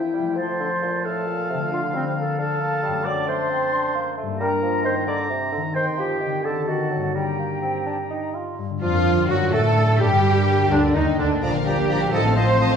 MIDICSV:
0, 0, Header, 1, 12, 480
1, 0, Start_track
1, 0, Tempo, 450789
1, 393, Time_signature, 6, 3, 24, 8
1, 6616, Tempo, 473186
1, 13262, End_track
2, 0, Start_track
2, 0, Title_t, "Flute section"
2, 0, Program_c, 0, 73
2, 0, Note_on_c, 0, 76, 40
2, 384, Note_off_c, 0, 76, 0
2, 398, Note_on_c, 0, 84, 54
2, 1102, Note_off_c, 0, 84, 0
2, 1110, Note_on_c, 0, 81, 56
2, 1813, Note_off_c, 0, 81, 0
2, 1832, Note_on_c, 0, 77, 64
2, 2069, Note_off_c, 0, 77, 0
2, 2070, Note_on_c, 0, 72, 53
2, 2305, Note_off_c, 0, 72, 0
2, 2311, Note_on_c, 0, 81, 47
2, 2522, Note_off_c, 0, 81, 0
2, 2535, Note_on_c, 0, 81, 64
2, 3231, Note_off_c, 0, 81, 0
2, 3245, Note_on_c, 0, 86, 66
2, 3485, Note_off_c, 0, 86, 0
2, 3490, Note_on_c, 0, 84, 71
2, 4367, Note_off_c, 0, 84, 0
2, 4684, Note_on_c, 0, 82, 68
2, 5149, Note_off_c, 0, 82, 0
2, 5157, Note_on_c, 0, 84, 61
2, 5396, Note_on_c, 0, 86, 68
2, 5397, Note_off_c, 0, 84, 0
2, 5638, Note_off_c, 0, 86, 0
2, 6124, Note_on_c, 0, 84, 67
2, 6352, Note_off_c, 0, 84, 0
2, 6376, Note_on_c, 0, 79, 54
2, 6851, Note_on_c, 0, 81, 56
2, 6854, Note_off_c, 0, 79, 0
2, 7083, Note_off_c, 0, 81, 0
2, 7093, Note_on_c, 0, 78, 45
2, 7561, Note_off_c, 0, 78, 0
2, 7571, Note_on_c, 0, 79, 52
2, 8753, Note_off_c, 0, 79, 0
2, 9265, Note_on_c, 0, 77, 53
2, 9711, Note_off_c, 0, 77, 0
2, 9744, Note_on_c, 0, 78, 57
2, 9983, Note_off_c, 0, 78, 0
2, 9985, Note_on_c, 0, 81, 70
2, 10459, Note_on_c, 0, 79, 77
2, 10464, Note_off_c, 0, 81, 0
2, 11171, Note_off_c, 0, 79, 0
2, 11191, Note_on_c, 0, 74, 67
2, 11426, Note_off_c, 0, 74, 0
2, 11432, Note_on_c, 0, 75, 58
2, 11667, Note_on_c, 0, 74, 55
2, 11670, Note_off_c, 0, 75, 0
2, 11906, Note_off_c, 0, 74, 0
2, 12143, Note_on_c, 0, 79, 69
2, 12584, Note_off_c, 0, 79, 0
2, 12619, Note_on_c, 0, 81, 62
2, 12848, Note_on_c, 0, 84, 73
2, 12851, Note_off_c, 0, 81, 0
2, 13262, Note_off_c, 0, 84, 0
2, 13262, End_track
3, 0, Start_track
3, 0, Title_t, "Violin section"
3, 0, Program_c, 1, 48
3, 9253, Note_on_c, 1, 65, 60
3, 9705, Note_off_c, 1, 65, 0
3, 9729, Note_on_c, 1, 66, 60
3, 9971, Note_off_c, 1, 66, 0
3, 9971, Note_on_c, 1, 69, 61
3, 10452, Note_on_c, 1, 67, 61
3, 10457, Note_off_c, 1, 69, 0
3, 11175, Note_on_c, 1, 62, 57
3, 11182, Note_off_c, 1, 67, 0
3, 11256, Note_off_c, 1, 62, 0
3, 11413, Note_on_c, 1, 63, 60
3, 11655, Note_off_c, 1, 63, 0
3, 11660, Note_on_c, 1, 62, 57
3, 11741, Note_off_c, 1, 62, 0
3, 11898, Note_on_c, 1, 82, 40
3, 12013, Note_off_c, 1, 82, 0
3, 12015, Note_on_c, 1, 77, 45
3, 12137, Note_on_c, 1, 82, 45
3, 12139, Note_off_c, 1, 77, 0
3, 12258, Note_on_c, 1, 77, 48
3, 12259, Note_off_c, 1, 82, 0
3, 12370, Note_on_c, 1, 82, 45
3, 12379, Note_off_c, 1, 77, 0
3, 12485, Note_off_c, 1, 82, 0
3, 12490, Note_on_c, 1, 77, 45
3, 12608, Note_on_c, 1, 81, 45
3, 12613, Note_off_c, 1, 77, 0
3, 12723, Note_off_c, 1, 81, 0
3, 12733, Note_on_c, 1, 77, 43
3, 12854, Note_off_c, 1, 77, 0
3, 12855, Note_on_c, 1, 81, 47
3, 12971, Note_on_c, 1, 77, 45
3, 12975, Note_off_c, 1, 81, 0
3, 13092, Note_off_c, 1, 77, 0
3, 13093, Note_on_c, 1, 81, 50
3, 13205, Note_off_c, 1, 81, 0
3, 13218, Note_on_c, 1, 77, 42
3, 13262, Note_off_c, 1, 77, 0
3, 13262, End_track
4, 0, Start_track
4, 0, Title_t, "Oboe"
4, 0, Program_c, 2, 68
4, 0, Note_on_c, 2, 79, 37
4, 396, Note_off_c, 2, 79, 0
4, 402, Note_on_c, 2, 81, 41
4, 1119, Note_on_c, 2, 77, 54
4, 1135, Note_off_c, 2, 81, 0
4, 2538, Note_off_c, 2, 77, 0
4, 2544, Note_on_c, 2, 77, 55
4, 3250, Note_on_c, 2, 81, 53
4, 3266, Note_off_c, 2, 77, 0
4, 4398, Note_off_c, 2, 81, 0
4, 4675, Note_on_c, 2, 82, 51
4, 5351, Note_off_c, 2, 82, 0
4, 5383, Note_on_c, 2, 82, 62
4, 6118, Note_on_c, 2, 79, 47
4, 6134, Note_off_c, 2, 82, 0
4, 6851, Note_on_c, 2, 81, 51
4, 6866, Note_off_c, 2, 79, 0
4, 7558, Note_off_c, 2, 81, 0
4, 7564, Note_on_c, 2, 82, 44
4, 8749, Note_off_c, 2, 82, 0
4, 9250, Note_on_c, 2, 65, 57
4, 9704, Note_off_c, 2, 65, 0
4, 9740, Note_on_c, 2, 66, 65
4, 9982, Note_on_c, 2, 69, 65
4, 9997, Note_off_c, 2, 66, 0
4, 10455, Note_on_c, 2, 67, 65
4, 10471, Note_off_c, 2, 69, 0
4, 11173, Note_off_c, 2, 67, 0
4, 11180, Note_on_c, 2, 62, 70
4, 11290, Note_off_c, 2, 62, 0
4, 11417, Note_on_c, 2, 63, 59
4, 11527, Note_off_c, 2, 63, 0
4, 11663, Note_on_c, 2, 62, 61
4, 11771, Note_off_c, 2, 62, 0
4, 12149, Note_on_c, 2, 67, 68
4, 12587, Note_off_c, 2, 67, 0
4, 12611, Note_on_c, 2, 69, 74
4, 12847, Note_off_c, 2, 69, 0
4, 12857, Note_on_c, 2, 72, 77
4, 13262, Note_off_c, 2, 72, 0
4, 13262, End_track
5, 0, Start_track
5, 0, Title_t, "Violin section"
5, 0, Program_c, 3, 48
5, 9257, Note_on_c, 3, 65, 73
5, 9707, Note_off_c, 3, 65, 0
5, 9747, Note_on_c, 3, 66, 63
5, 9979, Note_on_c, 3, 69, 61
5, 9985, Note_off_c, 3, 66, 0
5, 10451, Note_off_c, 3, 69, 0
5, 10460, Note_on_c, 3, 67, 78
5, 11172, Note_off_c, 3, 67, 0
5, 11183, Note_on_c, 3, 62, 73
5, 11426, Note_off_c, 3, 62, 0
5, 11431, Note_on_c, 3, 63, 61
5, 11667, Note_on_c, 3, 62, 60
5, 11669, Note_off_c, 3, 63, 0
5, 11901, Note_off_c, 3, 62, 0
5, 11910, Note_on_c, 3, 74, 51
5, 12019, Note_off_c, 3, 74, 0
5, 12026, Note_on_c, 3, 70, 48
5, 12145, Note_off_c, 3, 70, 0
5, 12150, Note_on_c, 3, 74, 47
5, 12262, Note_on_c, 3, 70, 46
5, 12266, Note_off_c, 3, 74, 0
5, 12381, Note_off_c, 3, 70, 0
5, 12383, Note_on_c, 3, 74, 50
5, 12493, Note_off_c, 3, 74, 0
5, 12499, Note_on_c, 3, 70, 51
5, 12617, Note_off_c, 3, 70, 0
5, 12619, Note_on_c, 3, 75, 52
5, 12729, Note_off_c, 3, 75, 0
5, 12744, Note_on_c, 3, 72, 43
5, 12859, Note_off_c, 3, 72, 0
5, 12860, Note_on_c, 3, 75, 46
5, 12977, Note_off_c, 3, 75, 0
5, 12983, Note_on_c, 3, 72, 43
5, 13089, Note_on_c, 3, 75, 49
5, 13099, Note_off_c, 3, 72, 0
5, 13203, Note_off_c, 3, 75, 0
5, 13220, Note_on_c, 3, 72, 51
5, 13262, Note_off_c, 3, 72, 0
5, 13262, End_track
6, 0, Start_track
6, 0, Title_t, "Clarinet"
6, 0, Program_c, 4, 71
6, 0, Note_on_c, 4, 64, 44
6, 392, Note_on_c, 4, 72, 58
6, 408, Note_off_c, 4, 64, 0
6, 1113, Note_on_c, 4, 69, 52
6, 1129, Note_off_c, 4, 72, 0
6, 1829, Note_off_c, 4, 69, 0
6, 1837, Note_on_c, 4, 65, 59
6, 1942, Note_off_c, 4, 65, 0
6, 2084, Note_on_c, 4, 60, 53
6, 2187, Note_off_c, 4, 60, 0
6, 2321, Note_on_c, 4, 69, 57
6, 2543, Note_off_c, 4, 69, 0
6, 2562, Note_on_c, 4, 69, 64
6, 3255, Note_on_c, 4, 74, 67
6, 3271, Note_off_c, 4, 69, 0
6, 3490, Note_off_c, 4, 74, 0
6, 3497, Note_on_c, 4, 72, 80
6, 4384, Note_off_c, 4, 72, 0
6, 4685, Note_on_c, 4, 70, 70
6, 5125, Note_off_c, 4, 70, 0
6, 5164, Note_on_c, 4, 72, 73
6, 5270, Note_off_c, 4, 72, 0
6, 5404, Note_on_c, 4, 74, 61
6, 5511, Note_off_c, 4, 74, 0
6, 6128, Note_on_c, 4, 72, 71
6, 6238, Note_off_c, 4, 72, 0
6, 6378, Note_on_c, 4, 67, 66
6, 6857, Note_on_c, 4, 69, 55
6, 6872, Note_off_c, 4, 67, 0
6, 7092, Note_on_c, 4, 66, 49
6, 7108, Note_off_c, 4, 69, 0
6, 7569, Note_on_c, 4, 67, 45
6, 7584, Note_off_c, 4, 66, 0
6, 8776, Note_off_c, 4, 67, 0
6, 9263, Note_on_c, 4, 65, 64
6, 9739, Note_on_c, 4, 66, 55
6, 9754, Note_off_c, 4, 65, 0
6, 9991, Note_on_c, 4, 69, 67
6, 10006, Note_off_c, 4, 66, 0
6, 10466, Note_on_c, 4, 67, 59
6, 10481, Note_off_c, 4, 69, 0
6, 11190, Note_on_c, 4, 62, 61
6, 11205, Note_off_c, 4, 67, 0
6, 11421, Note_off_c, 4, 62, 0
6, 11427, Note_on_c, 4, 63, 68
6, 11535, Note_off_c, 4, 63, 0
6, 11667, Note_on_c, 4, 62, 60
6, 11901, Note_off_c, 4, 62, 0
6, 11910, Note_on_c, 4, 74, 51
6, 12016, Note_off_c, 4, 74, 0
6, 12149, Note_on_c, 4, 74, 48
6, 12255, Note_off_c, 4, 74, 0
6, 12393, Note_on_c, 4, 74, 49
6, 12497, Note_off_c, 4, 74, 0
6, 12626, Note_on_c, 4, 75, 48
6, 12731, Note_off_c, 4, 75, 0
6, 12856, Note_on_c, 4, 75, 55
6, 12963, Note_off_c, 4, 75, 0
6, 13101, Note_on_c, 4, 75, 53
6, 13207, Note_off_c, 4, 75, 0
6, 13262, End_track
7, 0, Start_track
7, 0, Title_t, "Cello section"
7, 0, Program_c, 5, 48
7, 9258, Note_on_c, 5, 65, 72
7, 9708, Note_off_c, 5, 65, 0
7, 9740, Note_on_c, 5, 66, 69
7, 9978, Note_on_c, 5, 69, 73
7, 9981, Note_off_c, 5, 66, 0
7, 10456, Note_on_c, 5, 67, 72
7, 10460, Note_off_c, 5, 69, 0
7, 11180, Note_on_c, 5, 62, 68
7, 11184, Note_off_c, 5, 67, 0
7, 11423, Note_on_c, 5, 63, 59
7, 11425, Note_off_c, 5, 62, 0
7, 11504, Note_off_c, 5, 63, 0
7, 11661, Note_on_c, 5, 62, 63
7, 11898, Note_off_c, 5, 62, 0
7, 12140, Note_on_c, 5, 67, 77
7, 12583, Note_off_c, 5, 67, 0
7, 12611, Note_on_c, 5, 69, 69
7, 12852, Note_off_c, 5, 69, 0
7, 12852, Note_on_c, 5, 72, 84
7, 13262, Note_off_c, 5, 72, 0
7, 13262, End_track
8, 0, Start_track
8, 0, Title_t, "Harp"
8, 0, Program_c, 6, 46
8, 0, Note_on_c, 6, 52, 34
8, 0, Note_on_c, 6, 60, 28
8, 0, Note_on_c, 6, 67, 29
8, 0, Note_on_c, 6, 70, 27
8, 202, Note_on_c, 6, 53, 38
8, 251, Note_on_c, 6, 57, 31
8, 299, Note_on_c, 6, 65, 28
8, 318, Note_off_c, 6, 52, 0
8, 348, Note_on_c, 6, 69, 33
8, 365, Note_off_c, 6, 67, 0
8, 389, Note_off_c, 6, 70, 0
8, 1641, Note_on_c, 6, 50, 42
8, 1675, Note_off_c, 6, 57, 0
8, 1688, Note_on_c, 6, 57, 35
8, 1723, Note_off_c, 6, 65, 0
8, 1736, Note_on_c, 6, 65, 35
8, 1771, Note_off_c, 6, 69, 0
8, 1777, Note_off_c, 6, 60, 0
8, 1784, Note_on_c, 6, 69, 36
8, 3061, Note_on_c, 6, 42, 46
8, 3095, Note_off_c, 6, 57, 0
8, 3108, Note_on_c, 6, 57, 44
8, 3157, Note_on_c, 6, 62, 38
8, 3171, Note_off_c, 6, 53, 0
8, 3172, Note_off_c, 6, 50, 0
8, 3191, Note_off_c, 6, 69, 0
8, 3204, Note_on_c, 6, 69, 44
8, 3220, Note_off_c, 6, 65, 0
8, 4495, Note_on_c, 6, 43, 47
8, 4541, Note_on_c, 6, 58, 37
8, 4578, Note_off_c, 6, 62, 0
8, 4591, Note_on_c, 6, 62, 41
8, 4607, Note_off_c, 6, 42, 0
8, 4630, Note_off_c, 6, 57, 0
8, 4637, Note_on_c, 6, 67, 37
8, 4679, Note_off_c, 6, 69, 0
8, 5929, Note_on_c, 6, 51, 46
8, 5977, Note_on_c, 6, 60, 35
8, 6024, Note_on_c, 6, 63, 36
8, 6051, Note_off_c, 6, 43, 0
8, 6058, Note_off_c, 6, 67, 0
8, 6071, Note_on_c, 6, 67, 38
8, 6074, Note_off_c, 6, 58, 0
8, 6099, Note_off_c, 6, 62, 0
8, 6663, Note_on_c, 6, 50, 41
8, 6696, Note_off_c, 6, 60, 0
8, 6709, Note_on_c, 6, 60, 35
8, 6740, Note_off_c, 6, 63, 0
8, 6752, Note_on_c, 6, 63, 37
8, 6776, Note_off_c, 6, 51, 0
8, 6798, Note_on_c, 6, 69, 33
8, 6844, Note_off_c, 6, 67, 0
8, 7378, Note_on_c, 6, 43, 35
8, 7426, Note_on_c, 6, 58, 34
8, 7471, Note_on_c, 6, 62, 29
8, 7493, Note_off_c, 6, 50, 0
8, 7516, Note_off_c, 6, 60, 0
8, 7516, Note_on_c, 6, 67, 30
8, 7538, Note_off_c, 6, 63, 0
8, 7560, Note_off_c, 6, 69, 0
8, 8941, Note_off_c, 6, 43, 0
8, 9019, Note_on_c, 6, 43, 50
8, 9137, Note_on_c, 6, 50, 37
8, 9246, Note_off_c, 6, 62, 0
8, 9259, Note_on_c, 6, 62, 40
8, 9376, Note_on_c, 6, 70, 43
8, 9500, Note_on_c, 6, 74, 50
8, 9620, Note_on_c, 6, 79, 43
8, 9691, Note_off_c, 6, 58, 0
8, 9736, Note_off_c, 6, 67, 0
8, 9739, Note_on_c, 6, 42, 51
8, 9759, Note_off_c, 6, 70, 0
8, 9761, Note_off_c, 6, 50, 0
8, 9761, Note_off_c, 6, 79, 0
8, 9763, Note_off_c, 6, 43, 0
8, 9856, Note_on_c, 6, 54, 34
8, 9966, Note_off_c, 6, 62, 0
8, 9978, Note_on_c, 6, 62, 42
8, 10102, Note_on_c, 6, 72, 42
8, 10208, Note_off_c, 6, 74, 0
8, 10220, Note_on_c, 6, 74, 44
8, 10464, Note_on_c, 6, 43, 56
8, 10479, Note_off_c, 6, 54, 0
8, 10480, Note_off_c, 6, 42, 0
8, 10482, Note_off_c, 6, 72, 0
8, 10581, Note_on_c, 6, 50, 43
8, 10691, Note_off_c, 6, 62, 0
8, 10703, Note_on_c, 6, 62, 44
8, 10828, Note_on_c, 6, 70, 41
8, 10935, Note_off_c, 6, 74, 0
8, 10947, Note_on_c, 6, 74, 49
8, 11065, Note_on_c, 6, 82, 52
8, 11170, Note_off_c, 6, 74, 0
8, 11183, Note_on_c, 6, 74, 46
8, 11294, Note_off_c, 6, 70, 0
8, 11307, Note_on_c, 6, 70, 45
8, 11416, Note_off_c, 6, 62, 0
8, 11428, Note_on_c, 6, 62, 45
8, 11549, Note_on_c, 6, 58, 42
8, 11659, Note_off_c, 6, 50, 0
8, 11671, Note_on_c, 6, 50, 46
8, 11781, Note_off_c, 6, 58, 0
8, 11793, Note_on_c, 6, 58, 36
8, 11910, Note_on_c, 6, 46, 53
8, 11926, Note_off_c, 6, 43, 0
8, 11927, Note_off_c, 6, 50, 0
8, 12028, Note_on_c, 6, 53, 43
8, 12136, Note_off_c, 6, 62, 0
8, 12148, Note_on_c, 6, 62, 43
8, 12251, Note_off_c, 6, 70, 0
8, 12263, Note_on_c, 6, 70, 40
8, 12372, Note_off_c, 6, 74, 0
8, 12492, Note_off_c, 6, 82, 0
8, 12504, Note_on_c, 6, 82, 57
8, 12623, Note_on_c, 6, 45, 58
8, 12637, Note_off_c, 6, 70, 0
8, 12639, Note_off_c, 6, 46, 0
8, 12639, Note_off_c, 6, 62, 0
8, 12639, Note_off_c, 6, 82, 0
8, 12640, Note_off_c, 6, 58, 0
8, 12744, Note_on_c, 6, 57, 47
8, 13093, Note_on_c, 6, 77, 48
8, 13217, Note_on_c, 6, 84, 49
8, 13262, Note_off_c, 6, 45, 0
8, 13262, Note_off_c, 6, 53, 0
8, 13262, Note_off_c, 6, 57, 0
8, 13262, Note_off_c, 6, 77, 0
8, 13262, Note_off_c, 6, 84, 0
8, 13262, End_track
9, 0, Start_track
9, 0, Title_t, "Viola section"
9, 0, Program_c, 7, 48
9, 9261, Note_on_c, 7, 53, 55
9, 9709, Note_off_c, 7, 53, 0
9, 9741, Note_on_c, 7, 54, 56
9, 9977, Note_off_c, 7, 54, 0
9, 9986, Note_on_c, 7, 57, 59
9, 10455, Note_off_c, 7, 57, 0
9, 10461, Note_on_c, 7, 55, 67
9, 11172, Note_off_c, 7, 55, 0
9, 11190, Note_on_c, 7, 50, 58
9, 11430, Note_off_c, 7, 50, 0
9, 11430, Note_on_c, 7, 51, 57
9, 11667, Note_on_c, 7, 50, 60
9, 11669, Note_off_c, 7, 51, 0
9, 11901, Note_off_c, 7, 50, 0
9, 11907, Note_on_c, 7, 62, 45
9, 12017, Note_off_c, 7, 62, 0
9, 12025, Note_on_c, 7, 58, 40
9, 12144, Note_off_c, 7, 58, 0
9, 12149, Note_on_c, 7, 62, 43
9, 12263, Note_on_c, 7, 58, 48
9, 12265, Note_off_c, 7, 62, 0
9, 12380, Note_on_c, 7, 62, 47
9, 12381, Note_off_c, 7, 58, 0
9, 12489, Note_on_c, 7, 58, 45
9, 12491, Note_off_c, 7, 62, 0
9, 12606, Note_on_c, 7, 57, 46
9, 12613, Note_off_c, 7, 58, 0
9, 12722, Note_off_c, 7, 57, 0
9, 12726, Note_on_c, 7, 60, 47
9, 12846, Note_on_c, 7, 57, 42
9, 12850, Note_off_c, 7, 60, 0
9, 12967, Note_on_c, 7, 60, 46
9, 12970, Note_off_c, 7, 57, 0
9, 13085, Note_on_c, 7, 57, 52
9, 13090, Note_off_c, 7, 60, 0
9, 13201, Note_off_c, 7, 57, 0
9, 13206, Note_on_c, 7, 60, 52
9, 13262, Note_off_c, 7, 60, 0
9, 13262, End_track
10, 0, Start_track
10, 0, Title_t, "French horn section"
10, 0, Program_c, 8, 60
10, 9257, Note_on_c, 8, 53, 64
10, 9707, Note_off_c, 8, 53, 0
10, 9742, Note_on_c, 8, 54, 46
10, 9850, Note_off_c, 8, 54, 0
10, 9988, Note_on_c, 8, 57, 62
10, 10456, Note_off_c, 8, 57, 0
10, 10473, Note_on_c, 8, 55, 64
10, 11192, Note_on_c, 8, 50, 53
10, 11193, Note_off_c, 8, 55, 0
10, 11431, Note_off_c, 8, 50, 0
10, 11433, Note_on_c, 8, 51, 58
10, 11665, Note_off_c, 8, 51, 0
10, 11673, Note_on_c, 8, 50, 52
10, 11909, Note_off_c, 8, 50, 0
10, 12144, Note_on_c, 8, 55, 62
10, 12585, Note_off_c, 8, 55, 0
10, 12621, Note_on_c, 8, 57, 60
10, 12852, Note_off_c, 8, 57, 0
10, 12858, Note_on_c, 8, 60, 72
10, 13262, Note_off_c, 8, 60, 0
10, 13262, End_track
11, 0, Start_track
11, 0, Title_t, "Bassoon"
11, 0, Program_c, 10, 70
11, 142, Note_on_c, 10, 55, 40
11, 390, Note_on_c, 10, 53, 45
11, 405, Note_off_c, 10, 55, 0
11, 631, Note_off_c, 10, 53, 0
11, 638, Note_on_c, 10, 50, 41
11, 745, Note_off_c, 10, 50, 0
11, 873, Note_on_c, 10, 46, 40
11, 1108, Note_off_c, 10, 46, 0
11, 1118, Note_on_c, 10, 45, 44
11, 1352, Note_on_c, 10, 46, 48
11, 1368, Note_off_c, 10, 45, 0
11, 1588, Note_off_c, 10, 46, 0
11, 1594, Note_on_c, 10, 48, 42
11, 1701, Note_off_c, 10, 48, 0
11, 1828, Note_on_c, 10, 50, 49
11, 2070, Note_on_c, 10, 55, 44
11, 2086, Note_off_c, 10, 50, 0
11, 2300, Note_off_c, 10, 55, 0
11, 2306, Note_on_c, 10, 58, 48
11, 2539, Note_on_c, 10, 62, 53
11, 2555, Note_off_c, 10, 58, 0
11, 2769, Note_off_c, 10, 62, 0
11, 2776, Note_on_c, 10, 58, 51
11, 3005, Note_off_c, 10, 58, 0
11, 3010, Note_on_c, 10, 55, 51
11, 3243, Note_off_c, 10, 55, 0
11, 3252, Note_on_c, 10, 54, 57
11, 3484, Note_off_c, 10, 54, 0
11, 3494, Note_on_c, 10, 57, 51
11, 3728, Note_on_c, 10, 60, 51
11, 3744, Note_off_c, 10, 57, 0
11, 3959, Note_off_c, 10, 60, 0
11, 3965, Note_on_c, 10, 62, 50
11, 4199, Note_off_c, 10, 62, 0
11, 4206, Note_on_c, 10, 58, 60
11, 4440, Note_off_c, 10, 58, 0
11, 4447, Note_on_c, 10, 57, 50
11, 4679, Note_off_c, 10, 57, 0
11, 4687, Note_on_c, 10, 55, 56
11, 4793, Note_off_c, 10, 55, 0
11, 4922, Note_on_c, 10, 53, 52
11, 5161, Note_on_c, 10, 51, 53
11, 5177, Note_off_c, 10, 53, 0
11, 5392, Note_off_c, 10, 51, 0
11, 5399, Note_on_c, 10, 50, 52
11, 5635, Note_off_c, 10, 50, 0
11, 5642, Note_on_c, 10, 48, 51
11, 5878, Note_off_c, 10, 48, 0
11, 5883, Note_on_c, 10, 50, 43
11, 5992, Note_off_c, 10, 50, 0
11, 6126, Note_on_c, 10, 51, 47
11, 6369, Note_on_c, 10, 53, 49
11, 6385, Note_off_c, 10, 51, 0
11, 6610, Note_on_c, 10, 51, 44
11, 6626, Note_off_c, 10, 53, 0
11, 6845, Note_off_c, 10, 51, 0
11, 6851, Note_on_c, 10, 50, 50
11, 7083, Note_off_c, 10, 50, 0
11, 7088, Note_on_c, 10, 51, 44
11, 7314, Note_off_c, 10, 51, 0
11, 7320, Note_on_c, 10, 54, 44
11, 7559, Note_off_c, 10, 54, 0
11, 7566, Note_on_c, 10, 55, 42
11, 7804, Note_off_c, 10, 55, 0
11, 7808, Note_on_c, 10, 58, 35
11, 8040, Note_off_c, 10, 58, 0
11, 8046, Note_on_c, 10, 60, 35
11, 8286, Note_off_c, 10, 60, 0
11, 8291, Note_on_c, 10, 62, 42
11, 8400, Note_off_c, 10, 62, 0
11, 8533, Note_on_c, 10, 63, 42
11, 8778, Note_on_c, 10, 65, 43
11, 8793, Note_off_c, 10, 63, 0
11, 9017, Note_off_c, 10, 65, 0
11, 9255, Note_on_c, 10, 53, 60
11, 9736, Note_on_c, 10, 54, 55
11, 9752, Note_off_c, 10, 53, 0
11, 9971, Note_off_c, 10, 54, 0
11, 9978, Note_on_c, 10, 57, 71
11, 10450, Note_off_c, 10, 57, 0
11, 10460, Note_on_c, 10, 55, 72
11, 11183, Note_on_c, 10, 50, 63
11, 11198, Note_off_c, 10, 55, 0
11, 11429, Note_on_c, 10, 51, 65
11, 11444, Note_off_c, 10, 50, 0
11, 11657, Note_off_c, 10, 51, 0
11, 11663, Note_on_c, 10, 50, 52
11, 11771, Note_off_c, 10, 50, 0
11, 11904, Note_on_c, 10, 53, 53
11, 12012, Note_off_c, 10, 53, 0
11, 12145, Note_on_c, 10, 53, 46
11, 12252, Note_off_c, 10, 53, 0
11, 12375, Note_on_c, 10, 53, 47
11, 12483, Note_off_c, 10, 53, 0
11, 12613, Note_on_c, 10, 53, 58
11, 12721, Note_off_c, 10, 53, 0
11, 12854, Note_on_c, 10, 53, 57
11, 12962, Note_off_c, 10, 53, 0
11, 13094, Note_on_c, 10, 53, 51
11, 13202, Note_off_c, 10, 53, 0
11, 13262, End_track
12, 0, Start_track
12, 0, Title_t, "Double bass section"
12, 0, Program_c, 11, 48
12, 9260, Note_on_c, 11, 41, 57
12, 9709, Note_off_c, 11, 41, 0
12, 9746, Note_on_c, 11, 42, 52
12, 9980, Note_on_c, 11, 45, 56
12, 9984, Note_off_c, 11, 42, 0
12, 10461, Note_off_c, 11, 45, 0
12, 10465, Note_on_c, 11, 43, 65
12, 11184, Note_on_c, 11, 38, 58
12, 11189, Note_off_c, 11, 43, 0
12, 11422, Note_off_c, 11, 38, 0
12, 11428, Note_on_c, 11, 39, 56
12, 11509, Note_off_c, 11, 39, 0
12, 11666, Note_on_c, 11, 38, 59
12, 11900, Note_off_c, 11, 38, 0
12, 11910, Note_on_c, 11, 34, 62
12, 12536, Note_off_c, 11, 34, 0
12, 12622, Note_on_c, 11, 33, 69
12, 13251, Note_off_c, 11, 33, 0
12, 13262, End_track
0, 0, End_of_file